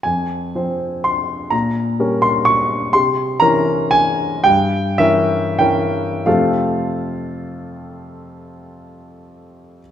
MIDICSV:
0, 0, Header, 1, 2, 480
1, 0, Start_track
1, 0, Tempo, 502513
1, 42, Time_signature, 3, 2, 24, 8
1, 1003, Tempo, 472069
1, 3403, Tempo, 526778
1, 4843, Tempo, 607287
1, 5323, Tempo, 657174
1, 5803, Tempo, 610998
1, 7723, Tempo, 639659
1, 8635, End_track
2, 0, Start_track
2, 0, Title_t, "Grand piano"
2, 0, Program_c, 0, 0
2, 32, Note_on_c, 0, 80, 58
2, 49, Note_on_c, 0, 41, 39
2, 225, Control_c, 0, 64, 127
2, 510, Note_off_c, 0, 41, 0
2, 527, Note_on_c, 0, 53, 33
2, 535, Note_on_c, 0, 72, 36
2, 536, Note_on_c, 0, 60, 30
2, 994, Note_on_c, 0, 84, 68
2, 997, Note_off_c, 0, 80, 0
2, 1452, Note_off_c, 0, 53, 0
2, 1456, Note_off_c, 0, 72, 0
2, 1457, Note_off_c, 0, 60, 0
2, 1465, Note_on_c, 0, 82, 69
2, 1481, Note_on_c, 0, 46, 43
2, 1485, Note_off_c, 0, 84, 0
2, 1506, Control_c, 0, 64, 0
2, 1644, Control_c, 0, 64, 127
2, 1947, Note_off_c, 0, 46, 0
2, 1963, Note_on_c, 0, 55, 40
2, 1969, Note_on_c, 0, 70, 40
2, 1971, Note_on_c, 0, 61, 37
2, 2192, Note_on_c, 0, 84, 78
2, 2194, Note_off_c, 0, 82, 0
2, 2428, Note_on_c, 0, 85, 82
2, 2439, Note_off_c, 0, 84, 0
2, 2874, Note_off_c, 0, 55, 0
2, 2877, Note_off_c, 0, 70, 0
2, 2878, Note_off_c, 0, 61, 0
2, 2907, Note_off_c, 0, 85, 0
2, 2916, Note_on_c, 0, 84, 84
2, 2930, Note_on_c, 0, 48, 52
2, 2931, Control_c, 0, 64, 0
2, 3102, Control_c, 0, 64, 127
2, 3389, Note_on_c, 0, 82, 91
2, 3396, Note_off_c, 0, 48, 0
2, 3404, Note_off_c, 0, 84, 0
2, 3407, Note_on_c, 0, 52, 45
2, 3411, Note_on_c, 0, 61, 47
2, 3411, Note_on_c, 0, 70, 51
2, 3856, Note_on_c, 0, 80, 91
2, 3864, Note_off_c, 0, 82, 0
2, 4316, Note_off_c, 0, 52, 0
2, 4318, Note_off_c, 0, 61, 0
2, 4318, Note_off_c, 0, 70, 0
2, 4337, Note_on_c, 0, 79, 93
2, 4343, Note_off_c, 0, 80, 0
2, 4355, Note_on_c, 0, 43, 60
2, 4366, Control_c, 0, 64, 0
2, 4539, Control_c, 0, 64, 127
2, 4832, Note_off_c, 0, 43, 0
2, 4835, Note_on_c, 0, 76, 93
2, 4838, Note_off_c, 0, 79, 0
2, 4842, Note_on_c, 0, 52, 49
2, 4844, Note_on_c, 0, 61, 47
2, 4848, Note_on_c, 0, 70, 51
2, 5291, Note_off_c, 0, 52, 0
2, 5292, Note_off_c, 0, 61, 0
2, 5295, Note_off_c, 0, 70, 0
2, 5313, Note_on_c, 0, 79, 75
2, 5320, Note_off_c, 0, 76, 0
2, 5324, Note_on_c, 0, 52, 42
2, 5327, Note_on_c, 0, 61, 43
2, 5328, Note_on_c, 0, 70, 48
2, 5775, Note_off_c, 0, 52, 0
2, 5776, Note_off_c, 0, 61, 0
2, 5777, Note_off_c, 0, 70, 0
2, 5799, Note_off_c, 0, 79, 0
2, 5806, Note_on_c, 0, 41, 51
2, 5807, Note_on_c, 0, 77, 61
2, 5809, Note_on_c, 0, 48, 45
2, 5811, Note_on_c, 0, 57, 48
2, 5815, Note_on_c, 0, 60, 45
2, 5815, Note_on_c, 0, 65, 46
2, 5815, Note_on_c, 0, 69, 47
2, 5821, Control_c, 0, 64, 0
2, 5999, Control_c, 0, 64, 127
2, 8542, Note_off_c, 0, 41, 0
2, 8542, Note_off_c, 0, 77, 0
2, 8544, Note_off_c, 0, 48, 0
2, 8547, Note_off_c, 0, 57, 0
2, 8550, Note_off_c, 0, 60, 0
2, 8550, Note_off_c, 0, 65, 0
2, 8550, Note_off_c, 0, 69, 0
2, 8635, End_track
0, 0, End_of_file